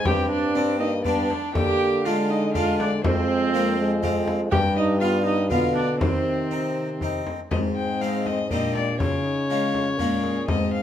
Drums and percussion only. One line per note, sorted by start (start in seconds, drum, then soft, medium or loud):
0.05 frame drum medium
1.05 frame drum soft
1.30 frame drum medium
1.55 frame drum medium
2.55 frame drum soft
2.80 frame drum medium
3.04 frame drum medium
4.03 frame drum soft
4.28 frame drum medium
4.52 frame drum medium
5.51 frame drum soft
5.76 frame drum soft
6.01 frame drum medium
7.01 frame drum soft
7.27 frame drum medium
7.51 frame drum medium
8.26 frame drum soft
8.51 frame drum soft
8.75 frame drum soft
9.00 frame drum medium
9.74 frame drum soft
9.99 frame drum soft
10.24 frame drum soft
10.48 frame drum medium